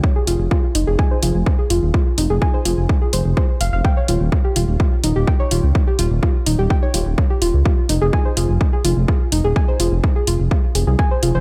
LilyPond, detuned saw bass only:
\new Staff \with { instrumentName = "Detuned saw bass" } { \clef bass \time 4/4 \key f \minor \tempo 4 = 126 r8 f,,16 f,,16 r8 f,,16 f,,16 r8 f,,16 f,,16 r8 f,,16 ees,,16 | r8 f,,16 f,,16 r8 f,,16 f,,16 r8 f,,16 f,,16 r8 f,,16 f,,16 | r8 ees,,16 ees,,16 r8 ees,,16 ees,,16 r8 ees,,16 ees,,16 r8 ees,,16 des,16 | r8 ees,,16 ees,,16 r8 ees,,16 ees,,16 r8 ees,,16 ees,,16 r8 ees,,16 des,16 |
r8 f,,16 f,,16 r8 f,,16 f,,16 r8 f,,16 f,,16 r8 f,,16 ees,,16 | r8 f,,16 f,,16 r8 f,,16 f,,16 r8 f,,16 c,16 r8 f,,16 f,,16 | }